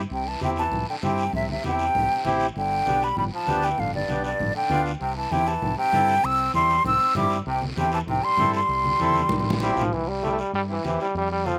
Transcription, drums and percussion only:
0.10 long guiro medium
0.41 high conga medium
0.41 short guiro medium
0.56 short guiro medium
0.72 low conga medium
0.72 long guiro medium
1.02 high conga medium
1.02 short guiro medium
1.18 short guiro medium
1.33 low conga medium
1.33 long guiro medium
1.49 high conga medium
1.64 high conga medium
1.64 short guiro medium
1.79 short guiro medium
1.95 low conga medium
1.95 long guiro medium
2.25 high conga medium
2.25 short guiro medium
2.40 short guiro medium
2.56 long guiro medium
2.87 high conga medium
2.87 short guiro medium
3.02 short guiro medium
3.17 low conga medium
3.17 long guiro medium
3.47 high conga medium
3.47 short guiro medium
3.63 short guiro medium
3.78 low conga medium
3.78 long guiro medium
3.94 high conga medium
4.08 high conga medium
4.08 short guiro medium
4.24 short guiro medium
4.40 low conga medium
4.40 long guiro medium
4.70 high conga medium
4.70 short guiro medium
4.86 short guiro medium
5.01 long guiro medium
5.32 high conga medium
5.32 short guiro medium
5.46 short guiro medium
5.62 low conga medium
5.62 long guiro medium
5.93 high conga medium
5.93 short guiro medium
6.08 short guiro medium
6.24 long guiro medium
6.54 high conga medium
6.54 short guiro medium
6.70 short guiro medium
6.84 low conga medium
6.84 long guiro medium
7.15 high conga medium
7.15 low conga medium
7.15 short guiro medium
7.30 short guiro medium
7.46 long guiro medium
7.62 high conga medium
7.77 high conga medium
7.77 short guiro medium
7.92 short guiro medium
8.08 low conga medium
8.08 long guiro medium
8.39 high conga medium
8.39 low conga medium
8.39 short guiro medium
8.54 short guiro medium
8.69 long guiro medium
8.84 high conga medium
8.99 high conga medium
8.99 short guiro medium
9.10 high conga medium
9.15 short guiro medium
9.20 high conga medium
9.29 low conga medium
9.29 long guiro medium
9.40 low conga medium
9.50 low conga loud
9.60 low conga medium
9.60 short guiro medium
9.77 short guiro medium
9.81 low conga loud
9.93 long guiro medium
10.23 high conga medium
10.23 short guiro medium
10.38 short guiro medium
10.54 long guiro medium
10.85 high conga medium
10.85 short guiro medium
11.00 short guiro medium
11.15 long guiro medium
11.46 high conga medium
11.46 short guiro medium

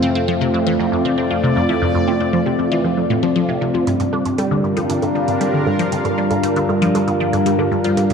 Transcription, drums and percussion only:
3.87 closed hi-hat medium
4.00 closed hi-hat soft
4.13 low bongo soft
4.25 closed hi-hat soft
4.38 closed hi-hat medium
4.38 low bongo medium
4.77 closed hi-hat soft
4.77 low bongo soft
4.90 closed hi-hat medium
5.02 closed hi-hat soft
5.02 low bongo medium
5.28 closed hi-hat soft
5.41 closed hi-hat medium
5.41 low bongo soft
5.66 low bongo medium
5.79 closed hi-hat medium
5.92 closed hi-hat medium
6.05 closed hi-hat soft
6.05 low bongo soft
6.31 closed hi-hat medium
6.31 low bongo medium
6.43 closed hi-hat medium
6.56 closed hi-hat soft
6.69 low bongo soft
6.82 closed hi-hat medium
6.95 closed hi-hat medium
6.95 low bongo medium
7.08 closed hi-hat soft
7.33 closed hi-hat medium
7.33 low bongo soft
7.46 closed hi-hat medium
7.59 low bongo medium
7.84 closed hi-hat medium
7.97 closed hi-hat medium
7.97 low bongo soft
8.10 closed hi-hat soft

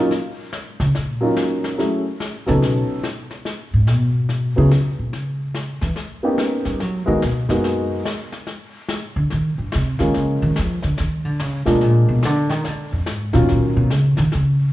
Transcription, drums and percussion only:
0.11 brush sweep soft
0.11 snare soft
0.53 snare medium
0.80 snare soft
0.95 brush sweep medium
0.95 snare soft
1.37 snare medium
1.64 snare soft
1.79 brush sweep soft
1.79 snare soft
2.20 snare medium
2.47 snare soft
2.62 brush sweep soft
2.62 snare soft
3.03 snare medium
3.31 snare soft
3.45 brush sweep soft
3.45 snare soft
3.87 snare medium
4.29 brush sweep soft
4.29 snare soft
4.71 snare medium
5.13 brush sweep soft
5.13 snare soft
5.54 snare medium
5.81 snare soft
5.96 brush sweep soft
5.96 snare soft
6.38 snare medium
6.65 snare soft
6.80 brush sweep medium
6.80 snare soft
7.22 snare medium
7.49 snare soft
7.64 brush sweep medium
7.64 snare soft
8.05 snare medium
8.32 snare soft
8.47 brush sweep soft
8.47 snare soft
8.89 snare medium
9.30 brush sweep medium
9.30 snare soft
9.72 snare medium
9.99 snare soft
10.14 brush sweep soft
10.14 snare soft
10.56 snare medium
10.82 snare soft
10.98 brush sweep medium
10.98 snare medium
11.40 snare medium
11.66 snare soft
11.81 brush sweep soft
11.81 snare soft
12.23 snare medium
12.49 snare soft
12.64 brush sweep soft
12.64 snare soft
13.06 snare medium
13.33 snare soft
13.49 brush sweep soft
13.49 snare soft
13.90 snare medium
14.17 snare soft
14.32 brush sweep soft
14.32 snare medium

